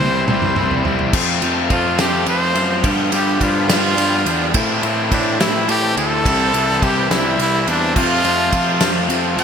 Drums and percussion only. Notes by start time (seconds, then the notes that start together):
0.28 mid tom
0.42 mid tom
0.56 mid tom
0.71 floor tom
0.85 floor tom
0.99 floor tom
1.13 kick, crash
1.42 ride
1.70 kick, ride
1.99 snare, ride
2.26 ride
2.55 ride
2.84 kick, ride
3.12 ride
3.41 kick, ride
3.69 snare, ride
3.98 ride
4.26 ride
4.54 kick, ride
4.83 ride
5.12 kick, ride
5.40 snare, ride
5.69 ride
5.97 ride
6.26 kick, ride
6.54 ride
6.82 kick, ride
7.11 snare, ride
7.39 ride
7.67 ride
7.96 kick, crash
8.24 ride
8.52 kick, ride
8.81 snare, ride
9.10 ride
9.39 ride